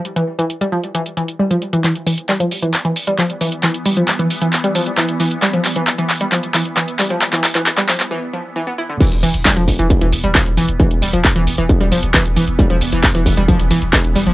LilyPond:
<<
  \new Staff \with { instrumentName = "Synth drone" } { \clef bass \time 4/4 \key c \major \tempo 4 = 134 r1 | <e b>1~ | <e b>1~ | <e b>1~ |
<e b>2 r2 | <e b>1~ | <e b>1~ | <e b>1 | }
  \new Staff \with { instrumentName = "Synth arpeggio sound" } { \clef bass \time 4/4 \key c \major r16 e16 r16 e16 r16 g16 f16 r16 e16 r16 e16 r16 g16 f16 r16 e16 | e16 r16 e16 r16 g16 f16 r16 e16 r16 e16 r16 g16 f16 r16 e16 r16 | e16 r16 g16 f16 r16 e16 r16 e16 r16 g16 f16 r16 e16 r16 e16 r16 | g16 f16 r16 e16 r16 e16 r16 g16 f16 r16 e16 r16 e16 r16 g16 f16 |
r16 e16 r16 e16 r16 g16 f16 r16 e16 r16 f16 r16 e16 b16 e'16 d16 | e16 r16 e16 r16 g16 f16 r16 e16 r16 e16 r16 g16 f16 r16 e16 r16 | e16 r16 g16 f16 r16 e16 r16 e16 r16 g16 f16 r16 e16 r16 e16 r16 | g16 f16 r16 e16 r16 e16 r16 g16 f16 r16 e16 r16 e16 r16 g16 f16 | }
  \new Staff \with { instrumentName = "Sub bass" } { \clef bass \time 4/4 \key c \major r1 | r1 | r1 | r1 |
r1 | r16 e,,16 e,,16 e,,16 r16 e,,16 e,,16 e,,16 r16 e,,16 e,,16 e,,16 r16 e,,16 e,,16 e,,16 | r16 e,,16 e,,16 e,,16 r16 e,,16 e,,16 e,,16 r16 e,,16 e,,16 e,,16 r16 e,,16 e,,16 e,,16 | r16 e,,16 e,,16 e,,16 r16 e,,16 e,,16 e,,16 r16 e,,16 e,,16 e,,16 r16 e,,16 e,,16 e,,16 | }
  \new DrumStaff \with { instrumentName = "Drums" } \drummode { \time 4/4 hh16 hh8 hh16 hh16 hh8 hh16 hh16 hh16 hh16 hh16 r16 hh16 hh16 hh16 | <hc hh>16 hh16 hho16 hh16 <hc hh>16 hh16 hho16 hh16 <hc hh>16 hh16 hho16 hh16 <hc hh>16 hh16 hho16 hh16 | <hc hh>16 hh16 hho16 hh16 <hc hh>16 hh16 hho16 hh16 <hc hh>16 hh16 hho16 hh16 <hc hh>16 hh16 hho16 hh16 | <hc hh>16 hh16 <hc hho>16 hh16 <hc hh>16 hh16 <hc hho>16 hh16 <hc hh>16 hh16 <hc hho>16 hh16 <hc hh>16 hh16 <hc hho>16 hh16 |
<hc hh>16 <hc hh>16 <hc hho>16 <hc hh>16 <hc hh>16 <hc hh>16 <hc hho>16 <hc hh>16 r4 r4 | <cymc hh bd>16 hh16 hho16 hh16 <hc hh bd>16 hh16 <hho bd>16 hh16 <hh bd>16 hh16 hho16 hh16 <hc hh bd>16 hh16 hho16 hh16 | <hh bd>16 hh16 hho16 hh16 <hc hh bd>16 hh16 hho16 hh16 <hh bd>16 hh16 hho16 hh16 <hc hh bd>16 hh16 hho16 hh16 | <hh bd>16 hh16 hho16 hh16 <hc hh bd>16 hh16 <hho bd>16 hh16 <hh bd>16 hh16 hho16 hh16 <hc hh bd>16 hh16 hho16 hh16 | }
>>